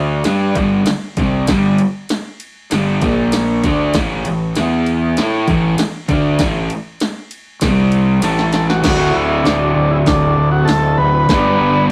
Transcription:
0.00 0.21 D2 medium
0.00 0.25 D3 medium
0.00 0.24 A3 medium
0.00 0.24 D4 medium
0.24 0.54 G2 medium
0.24 0.55 G3 medium
0.24 0.55 D4 medium
0.24 0.56 G4 medium
0.24 snare loud
0.24 ride medium
0.55 0.84 G1 medium
0.55 0.86 G2 loud
0.55 0.86 D3 medium
0.55 0.87 G3 loud
0.55 kick loud
0.55 ride medium
0.86 muted fingered electric bass stroke soft
0.86 muted overdriven electric guitar stroke medium
0.86 snare loud
0.86 ride loud
1.17 1.46 C2 medium
1.17 1.47 C3 medium
1.17 1.48 G3 medium
1.17 1.49 C4 loud
1.17 kick loud
1.17 ride medium
1.47 1.77 G1 medium
1.47 1.78 G2 medium
1.47 1.79 D3 medium
1.47 1.79 G3 loud
1.47 kick loud
1.47 snare loud
1.47 ride loud
1.78 ride medium
2.09 snare loud
2.09 ride medium
2.40 ride medium
2.71 3.00 G1 medium
2.71 3.01 G2 medium
2.71 3.02 D3 medium
2.71 3.02 G3 loud
2.71 snare loud
2.71 ride loud
3.02 3.60 A#1 medium
3.02 3.63 A#2 medium
3.02 3.63 F3 medium
3.02 3.64 A#3 loud
3.02 kick loud
3.02 ride medium
3.32 snare loud
3.32 ride loud
3.63 3.92 D2 medium
3.63 3.93 D3 medium
3.63 3.94 A3 medium
3.63 3.94 D4 loud
3.63 kick loud
3.63 ride medium
3.94 4.23 A1 loud
3.94 4.25 A2 loud
3.94 4.25 E3 loud
3.94 4.26 A3 loud
3.94 kick loud
3.94 snare loud
3.94 ride loud
4.25 4.54 A1 medium
4.25 4.50 A2 medium
4.25 4.51 E3 medium
4.25 ride medium
4.55 5.14 E2 medium
4.55 5.17 E3 medium
4.55 5.17 B3 medium
4.55 5.18 E4 loud
4.55 snare loud
4.55 ride medium
4.86 ride medium
5.17 5.46 A2 medium
5.17 5.48 A3 medium
5.17 5.48 E4 loud
5.17 5.48 A4 loud
5.17 snare loud
5.17 ride medium
5.47 5.76 A1 medium
5.47 5.78 A2 medium
5.47 5.78 E3 loud
5.47 5.79 A3 loud
5.47 kick loud
5.47 ride medium
5.78 muted fingered electric bass stroke soft
5.78 muted overdriven electric guitar stroke medium
5.78 snare loud
5.78 ride loud
6.08 6.37 D2 medium
6.08 6.39 D3 medium
6.08 6.40 A3 loud
6.08 6.40 D4 medium
6.08 kick loud
6.08 ride medium
6.39 6.68 A1 medium
6.39 6.69 A2 loud
6.39 6.70 E3 medium
6.39 6.70 A3 loud
6.39 kick loud
6.39 snare loud
6.39 ride loud
6.70 ride medium
7.00 snare loud
7.00 ride medium
7.31 ride medium
7.61 8.19 C2 medium
7.61 8.21 C3 medium
7.61 8.22 G3 medium
7.61 8.23 C4 loud
7.61 kick loud
7.61 snare loud
7.61 ride loud
7.92 ride medium
8.22 8.80 A1 medium
8.22 8.82 A2 medium
8.22 8.83 E3 medium
8.22 8.84 A3 medium
8.22 8.52 A4 medium
8.22 snare medium
8.22 ride loud
8.39 snare medium
8.53 8.68 A4 medium
8.53 snare medium
8.53 ride medium
8.70 9.17 F#4 medium
8.70 snare medium
8.83 9.13 D1 medium
8.83 11.26 D2 medium
8.83 11.27 A2 medium
8.83 11.27 D3 loud
8.83 11.28 A3 loud
8.83 kick loud
8.83 snare loud
8.83 open hi-hat medium
8.83 crash loud
8.87 11.29 F#4 medium
9.14 9.44 D1 medium
9.14 9.46 E4 medium
9.43 9.75 D1 medium
9.43 9.73 D4 medium
9.43 snare loud
9.43 open hi-hat medium
9.75 10.05 D1 loud
9.75 9.91 D4 medium
9.91 9.98 E4 medium
10.06 10.36 D1 medium
10.06 10.49 D4 loud
10.06 kick loud
10.06 snare loud
10.06 open hi-hat medium
10.38 10.66 D1 medium
10.51 10.68 F#4 loud
10.65 10.97 D1 loud
10.65 10.98 A4 loud
10.65 snare loud
10.65 open hi-hat medium
10.98 11.28 D1 medium
10.98 11.86 B4 loud
11.29 11.58 G1 loud
11.29 11.92 G2 medium
11.29 11.92 D3 loud
11.29 11.92 G3 loud
11.29 11.92 B3 medium
11.29 11.92 D4 loud
11.29 kick loud
11.29 snare loud
11.29 open hi-hat medium
11.33 11.92 G4 loud
11.61 11.89 G1 medium

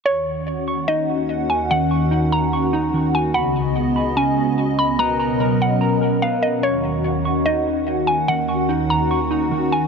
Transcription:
0.05 3.31 D#2 medium
0.05 3.31 D#3 medium
0.05 3.31 C#4 medium
0.05 4.95 F#4 medium
0.05 0.84 C#5 medium
0.05 3.31 F#5 medium
0.05 0.66 C#6 medium
0.68 1.90 C#6 medium
0.88 2.10 D#4 medium
0.88 1.46 D#5 medium
1.50 1.69 G#5 medium
1.71 2.92 D#3 medium
1.71 2.29 F#5 loud
1.91 2.52 C#6 medium
2.11 2.72 D#4 medium
2.32 3.10 A#5 medium
2.53 3.34 C#6 medium
2.73 3.35 D#4 medium
2.94 3.35 D#3 medium
3.15 3.34 G#5 medium
3.34 4.97 C#2 medium
3.34 4.97 C#3 medium
3.34 4.97 B3 medium
3.34 6.60 D#5 medium
3.34 4.13 F#5 medium
3.34 3.95 B5 loud
3.96 4.99 B5 medium
4.17 4.99 C#4 medium
4.17 4.75 G#5 medium
4.79 4.98 B5 medium
4.99 6.62 B2 medium
4.99 6.62 F#3 medium
4.99 6.21 B3 medium
4.99 9.88 C#4 medium
4.99 6.62 A#4 medium
4.99 5.57 A#5 loud
5.20 5.80 A#5 medium
5.40 6.00 A#4 medium
5.62 6.19 F#5 medium
5.81 6.63 A#5 loud
6.01 6.63 A#4 medium
6.22 6.63 B3 medium
6.22 6.42 F5 medium
6.43 6.62 D#5 medium
6.63 9.88 D#2 medium
6.63 9.88 D#3 medium
6.63 9.88 F#4 medium
6.63 7.42 C#5 medium
6.63 9.88 F#5 medium
6.63 7.24 C#6 medium
7.25 8.47 C#6 medium
7.46 8.68 D#4 medium
7.46 8.04 D#5 medium
8.07 8.27 G#5 medium
8.28 9.50 D#3 medium
8.28 8.86 F#5 loud
8.49 9.10 C#6 medium
8.69 9.29 D#4 medium
8.90 9.68 A#5 medium
9.11 9.88 C#6 medium
9.31 9.88 D#4 medium
9.51 9.88 D#3 medium
9.72 9.88 G#5 medium

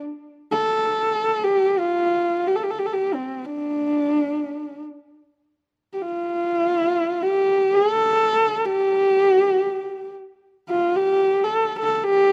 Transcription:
0.51 1.45 A4 medium
1.44 1.81 G4 medium
1.79 2.49 F4 medium
2.47 2.57 G4 medium
2.56 2.65 A4 medium
2.63 2.72 G4 medium
2.71 2.80 A4 medium
2.78 2.88 G4 medium
2.86 2.95 A4 medium
2.93 3.16 G4 medium
3.14 3.47 C4 medium
3.45 4.82 D4 medium
5.93 6.03 G4 soft
6.02 7.24 F4 medium
7.22 7.76 G4 medium
7.75 8.67 A4 medium
8.65 10.13 G4 medium
10.69 10.98 F4 medium
10.96 11.45 G4 medium
11.44 11.77 A4 medium
11.79 11.95 A4 medium
11.95 12.05 A4 medium
12.03 12.32 G4 loud

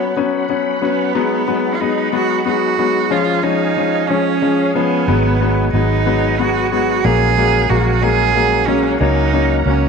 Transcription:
0.00 0.10 F#3 medium
0.00 1.13 F#3 soft
0.00 0.10 B3 medium
0.00 0.47 B3 medium
0.00 0.10 C#4 medium
0.00 1.13 C#4 soft
0.00 1.13 B4 soft
0.00 3.07 F#5 soft
0.00 3.08 B5 soft
0.16 0.43 F#3 medium
0.16 0.43 B3 medium
0.16 0.43 C#4 medium
0.49 0.75 F#3 medium
0.49 0.75 B3 soft
0.49 0.76 C#4 medium
0.82 1.08 F#3 medium
0.82 1.08 B3 medium
0.82 1.76 B3 medium
0.82 1.08 C#4 medium
1.15 1.41 F#3 medium
1.15 1.41 G#3 medium
1.15 1.41 B3 medium
1.15 3.10 D#4 soft
1.15 3.10 G#4 soft
1.47 1.74 F#3 medium
1.47 1.74 G#3 medium
1.47 1.74 B3 medium
1.75 1.82 F4 medium
1.80 2.07 F#3 medium
1.80 2.07 G#3 medium
1.80 2.07 B3 medium
1.80 2.13 D#4 medium
2.13 2.39 F#3 medium
2.13 2.39 G#3 medium
2.13 2.39 B3 medium
2.13 2.44 F#4 medium
2.45 2.72 F#3 medium
2.45 2.72 G#3 medium
2.45 2.72 B3 medium
2.45 3.13 F#4 medium
2.79 3.05 F#3 medium
2.79 3.05 G#3 medium
2.79 3.05 B3 medium
3.10 3.37 F3 medium
3.10 3.37 G#3 medium
3.10 3.37 C#4 medium
3.10 5.06 C#4 soft
3.10 3.45 F4 medium
3.10 5.07 G#4 soft
3.10 5.07 F5 soft
3.10 7.01 G#5 medium
3.43 3.70 F3 medium
3.43 3.70 G#3 medium
3.43 3.70 C#4 medium
3.43 4.10 D#4 medium
3.76 4.03 F3 medium
3.76 4.03 G#3 soft
3.76 4.03 C#4 medium
4.08 4.36 F3 medium
4.08 4.36 G#3 medium
4.08 4.74 C#4 medium
4.08 4.36 C#4 medium
4.42 4.68 F3 medium
4.42 4.68 G#3 medium
4.42 4.69 C#4 medium
4.75 5.01 F3 medium
4.75 5.01 G#3 medium
4.75 5.69 B3 medium
4.75 5.01 C#4 medium
5.08 5.69 G#1 medium
5.08 5.34 F#3 medium
5.08 5.34 G#3 medium
5.08 5.34 B3 medium
5.08 7.03 D#4 soft
5.08 7.02 B4 soft
5.08 9.89 F#5 soft
5.40 5.67 F#3 medium
5.40 5.67 G#3 medium
5.40 5.67 B3 medium
5.73 7.00 G#1 medium
5.73 6.00 F#3 medium
5.73 6.00 G#3 soft
5.73 6.00 B3 medium
5.73 6.41 D#4 medium
6.06 6.32 F#3 medium
6.06 6.32 G#3 medium
6.06 6.32 B3 medium
6.39 6.65 F#3 medium
6.39 6.65 G#3 medium
6.39 6.65 B3 medium
6.39 6.71 F#4 medium
6.72 6.98 F#3 medium
6.72 6.98 G#3 medium
6.72 6.98 B3 medium
6.72 7.06 F#4 medium
7.03 7.66 A#1 medium
7.03 7.30 F#3 medium
7.03 7.30 G#3 medium
7.03 7.30 A#3 medium
7.03 9.89 C#4 medium
7.03 7.71 G#4 loud
7.03 8.98 A#4 soft
7.03 8.98 G#5 medium
7.37 7.63 F#3 medium
7.37 7.63 G#3 medium
7.37 7.63 A#3 medium
7.69 8.97 A#1 medium
7.69 7.95 F#3 medium
7.69 7.96 G#3 medium
7.69 7.96 A#3 medium
7.69 8.04 F#4 medium
8.02 8.28 F#3 medium
8.02 8.28 G#3 medium
8.02 8.28 A#3 medium
8.02 8.69 G#4 loud
8.35 8.61 F#3 medium
8.35 8.61 G#3 medium
8.35 8.61 A#3 medium
8.68 8.94 F#3 medium
8.68 8.94 G#3 medium
8.68 8.94 A#3 medium
8.68 8.99 C#4 medium
9.00 9.62 C#2 medium
9.00 9.26 F#3 medium
9.00 9.27 A#3 medium
9.00 9.27 C#4 medium
9.00 9.61 D#4 medium
9.00 9.89 A#4 soft
9.00 9.89 A#5 medium
9.33 9.59 F#3 medium
9.33 9.59 A#3 medium
9.33 9.59 C#4 medium
9.66 9.89 C#2 medium
9.66 9.89 F#3 medium
9.66 9.89 A#3 medium
9.66 9.89 C#4 medium

